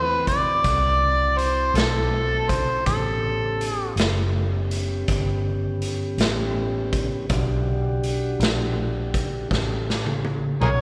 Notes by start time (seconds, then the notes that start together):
Already playing: E2 C4 E4 F#4 C5
0.03 B4
0.27 D5, kick, closed hi-hat
0.64 C2, kick, closed hi-hat
1.37 C5, closed hi-hat
1.74 B1 A4, snare, closed hi-hat
2.49 C5, kick, closed hi-hat
2.86 A1 B3 C#4 G4 A4, kick, closed hi-hat
3.61 closed hi-hat
3.96 F#1, snare, closed hi-hat
4.71 closed hi-hat
5.08 G1, kick, closed hi-hat
5.82 closed hi-hat
6.18 A1, snare, closed hi-hat
6.93 kick, closed hi-hat
7.29 B1 D4 F#4 G4, kick, closed hi-hat
8.04 closed hi-hat
8.40 A#1, snare, closed hi-hat
9.14 kick, closed hi-hat
9.51 A1 C#4 G4 A4, kick, snare
9.90 snare
10.06 high tom
10.25 high tom
10.61 B1 G#4 A#4 C#5, mid tom